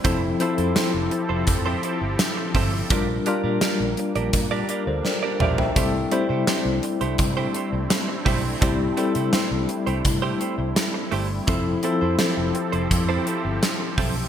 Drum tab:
HH |x-xxx-x-x-x-x-o-|x-x-x-xxx-x-----|x-x-x-xxx-x-x-o-|x-xxx-xxx-x-x-o-|
TB |----x-------x---|----x-----------|----x-------x---|----x-------x---|
SD |----o-------o---|----o-------o---|----o-------o---|----o-------o---|
T2 |----------------|--------------o-|----------------|----------------|
FT |----------------|---------------o|----------------|----------------|
BD |o-------o-----o-|o-------o-------|o-------o-----o-|o-------o-------|

HH |x-x-x-xxx-x-x-o-|
TB |----x-------x---|
SD |----o-------o---|
T2 |----------------|
FT |----------------|
BD |o-------o-----o-|